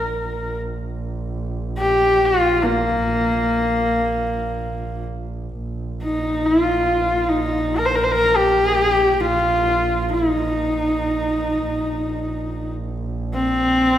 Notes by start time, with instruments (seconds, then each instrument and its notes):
Already playing: double bass A#1, horsehead fiddle A#4
1.78 horsehead fiddle G4
2.25 horsehead fiddle F4
2.63 horsehead fiddle A#3
5.58 double bass A#1
6.02 horsehead fiddle D#4
6.46 horsehead fiddle F4
7.29 horsehead fiddle D#4
7.78 horsehead fiddle A#4
7.85 horsehead fiddle C5
7.95 horsehead fiddle A#4
8.04 horsehead fiddle C5
8.11 horsehead fiddle A#4
8.36 horsehead fiddle G4
9.21 horsehead fiddle F4
10.13 horsehead fiddle D#4
11.65 double bass A#1
13.34 horsehead fiddle C4